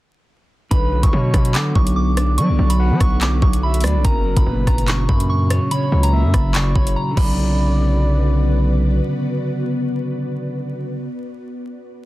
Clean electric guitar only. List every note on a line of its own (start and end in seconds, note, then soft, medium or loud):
0.71 1.33 D3 loud
0.92 1.74 F#3 medium
1.13 2.17 B3 medium
1.34 1.53 D3 medium
1.55 2.37 D3 medium
1.75 2.58 F#3 medium
2.17 3.21 D4 medium
2.38 2.99 D3 medium
2.59 3.41 F#3 medium
2.79 3.84 B3 medium
3.01 3.19 D3 medium
3.21 4.04 D3 medium
3.42 4.04 F#3 medium
3.84 4.05 D4 medium
4.04 4.66 C#3 loud
4.25 5.07 F#3 medium
4.46 5.50 A#2 medium
4.67 4.86 C#3 medium
4.88 5.70 C#3 medium
5.09 5.91 F#3 medium
5.51 6.55 C#5 medium
5.71 6.33 C#3 loud
5.92 6.74 F#3 medium
6.13 7.11 A#3 medium
6.34 6.54 C#3 medium
6.55 7.17 C#3 medium
6.75 7.14 F#3 medium
7.11 10.96 D3 medium
7.15 11.00 F#3 medium
7.19 11.04 B3 medium
7.23 11.08 C#3 medium